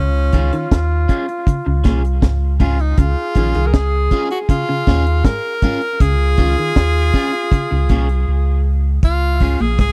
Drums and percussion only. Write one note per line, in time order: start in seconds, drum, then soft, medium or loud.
0.33 kick medium
0.33 closed hi-hat medium
0.53 closed hi-hat medium
0.71 kick loud
0.71 snare loud
0.71 closed hi-hat medium
1.09 kick medium
1.09 closed hi-hat medium
1.29 closed hi-hat soft
1.47 kick loud
1.47 closed hi-hat medium
1.84 kick medium
1.84 snare medium
1.84 closed hi-hat medium
2.05 closed hi-hat medium
2.22 kick loud
2.22 snare medium
2.22 closed hi-hat medium
2.60 kick medium
2.60 closed hi-hat medium
2.79 closed hi-hat soft
2.98 kick loud
2.98 closed hi-hat loud
3.35 kick medium
3.35 closed hi-hat medium
3.55 closed hi-hat medium
3.74 kick loud
3.74 snare loud
3.74 closed hi-hat medium
4.11 kick medium
4.11 closed hi-hat medium
4.31 closed hi-hat soft
4.49 kick loud
4.49 closed hi-hat medium
4.87 kick loud
4.87 snare medium
4.87 open hi-hat medium
5.07 closed hi-hat soft
5.25 kick loud
5.25 snare loud
5.25 closed hi-hat medium
5.62 kick medium
5.62 closed hi-hat medium
5.81 closed hi-hat soft
6.00 kick loud
6.00 closed hi-hat loud
6.38 kick medium
6.38 closed hi-hat medium
6.57 closed hi-hat soft
6.76 kick loud
6.76 snare loud
6.76 closed hi-hat medium
7.14 kick medium
7.14 open hi-hat medium
7.33 closed hi-hat soft
7.52 kick loud
7.52 closed hi-hat medium
7.89 kick medium
7.89 closed hi-hat medium
8.09 closed hi-hat soft
9.03 kick loud
9.03 closed hi-hat medium
9.40 kick medium
9.40 open hi-hat medium
9.60 closed hi-hat soft
9.79 kick loud
9.79 cross-stick loud
9.79 closed hi-hat medium